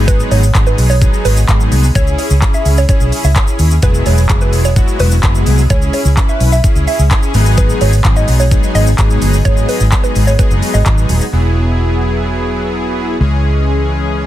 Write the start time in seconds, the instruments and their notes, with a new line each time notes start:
Already playing: fingered electric bass G#1, analog polysynth F#3 G#3 B3 D#4 G#4
0.08 synth pluck B4, kick, closed hi-hat, shaker
0.20 shaker
0.31 fingered electric bass G#1, synth pluck C#5, open hi-hat, shaker
0.43 shaker
0.54 fingered electric bass G#1, analog polysynth F#3 G#3 B3 D#4 G#4, kick, clap, closed hi-hat, shaker
0.67 synth pluck B4, shaker
0.78 fingered electric bass B1, open hi-hat, shaker
0.90 synth pluck C#5, shaker
1.01 analog polysynth F#3 G#3 B3 D#4 G#4, kick, closed hi-hat, shaker
1.13 shaker
1.25 fingered electric bass G#1, synth pluck B4, open hi-hat, shaker
1.37 shaker
1.48 fingered electric bass G#1, analog polysynth F#3 G#3 B3 D#4 G#4, kick, clap, closed hi-hat, shaker
1.60 shaker
1.72 fingered electric bass C2, open hi-hat, shaker
1.84 shaker
1.95 fingered electric bass C#2, analog polysynth C#4 E4 G#4, synth pluck C#5, kick, closed hi-hat, shaker
2.07 shaker
2.19 synth pluck C#5, open hi-hat, shaker
2.30 fingered electric bass C#2, shaker
2.42 analog polysynth C#4 E4 G#4, kick, clap, closed hi-hat, shaker
2.54 synth pluck E5, shaker
2.65 fingered electric bass C#2, open hi-hat, shaker
2.77 synth pluck C#5, shaker
2.89 analog polysynth C#4 E4 G#4, synth pluck C#5, kick, closed hi-hat, shaker
3.00 fingered electric bass B1, shaker
3.12 open hi-hat, shaker
3.24 fingered electric bass C#2, synth pluck E5, shaker
3.36 analog polysynth C#4 E4 G#4, kick, clap, closed hi-hat, shaker
3.47 shaker
3.59 fingered electric bass D#2, open hi-hat, shaker
3.71 shaker
3.82 fingered electric bass E1, analog polysynth F#3 G#3 B3 E4 G#4, synth pluck B4, kick, closed hi-hat, shaker
3.94 shaker
4.06 fingered electric bass E1, synth pluck C#5, open hi-hat, shaker
4.18 shaker
4.29 fingered electric bass F#1, analog polysynth F#3 G#3 B3 E4 G#4, kick, clap, closed hi-hat, shaker
4.41 synth pluck B4, shaker
4.53 fingered electric bass E1, open hi-hat, shaker
4.65 synth pluck C#5, shaker
4.76 analog polysynth F#3 G#3 B3 E4 F#4, kick, closed hi-hat, shaker
4.88 shaker
5.00 fingered electric bass E1, synth pluck B4, open hi-hat, shaker
5.11 shaker
5.23 fingered electric bass F#1, analog polysynth F#3 G#3 B3 E4 G#4, kick, clap, closed hi-hat, shaker
5.35 shaker
5.46 fingered electric bass C2, open hi-hat, shaker
5.58 shaker
5.70 fingered electric bass C#2, analog polysynth C#4 E4 G#4, synth pluck C#5, kick, closed hi-hat, shaker
5.82 shaker
5.93 synth pluck C#5, open hi-hat, shaker
6.05 fingered electric bass C#2, shaker
6.17 analog polysynth C#4 E4 B4, kick, clap, closed hi-hat, shaker
6.29 synth pluck E5, shaker
6.40 fingered electric bass B1, open hi-hat, shaker
6.52 synth pluck E5, shaker
6.64 analog polysynth C#4 E4 G#4, kick, closed hi-hat, shaker
6.76 fingered electric bass C#2, shaker
6.88 synth pluck E5, open hi-hat, shaker
6.99 fingered electric bass C#2, shaker
7.11 analog polysynth C#4 E4 G#4, kick, clap, closed hi-hat, shaker
7.23 shaker
7.34 fingered electric bass G#1, analog polysynth F#3 G#3 B3 D#4 G#4, open hi-hat, shaker
7.46 shaker
7.58 synth pluck B4, kick, closed hi-hat, shaker
7.69 shaker
7.81 fingered electric bass G#1, synth pluck C#5, open hi-hat, shaker
7.93 shaker
8.04 fingered electric bass G#1, analog polysynth F#3 G#3 B3 D#4 G#4, kick, clap, closed hi-hat, shaker
8.16 synth pluck D#5, shaker
8.28 fingered electric bass B1, open hi-hat, shaker
8.40 synth pluck C#5, shaker
8.51 analog polysynth F#3 G#3 B3 D#4 G#4, kick, closed hi-hat, shaker
8.63 shaker
8.75 fingered electric bass G#1, synth pluck D#5, open hi-hat, shaker
8.87 shaker
8.98 fingered electric bass G#1, analog polysynth F#3 G#3 B3 D#4 G#4, kick, clap, closed hi-hat, shaker
9.10 shaker
9.22 fingered electric bass G1, open hi-hat, shaker
9.33 shaker
9.45 fingered electric bass G#1, analog polysynth F#3 G#3 B3 D#4 G#4, synth pluck C#5, kick, closed hi-hat, shaker
9.57 shaker
9.69 synth pluck B4, open hi-hat, shaker
9.80 fingered electric bass G#1, shaker
9.92 analog polysynth F#3 G#3 B3 D#4 G#4, kick, clap, closed hi-hat, shaker
10.04 synth pluck B4, shaker
10.16 fingered electric bass G#1, open hi-hat, shaker
10.27 synth pluck C#5, shaker
10.39 analog polysynth F#3 G#3 B3 D#4 G#4, synth pluck B4, kick, closed hi-hat, shaker
10.51 fingered electric bass F#1, shaker
10.62 open hi-hat, shaker
10.74 fingered electric bass G#1, synth pluck D#5, shaker
10.86 fingered electric bass G#1, analog polysynth F#3 G#3 B3 D#4 G#4, kick, clap, closed hi-hat, shaker
10.98 shaker
11.09 fingered electric bass D#1, open hi-hat, shaker
11.21 shaker
11.32 fingered electric bass E1, analog polysynth F#3 B3 E4 G#4
13.20 fingered electric bass C#2, analog polysynth E3 G#3 C#4 G#4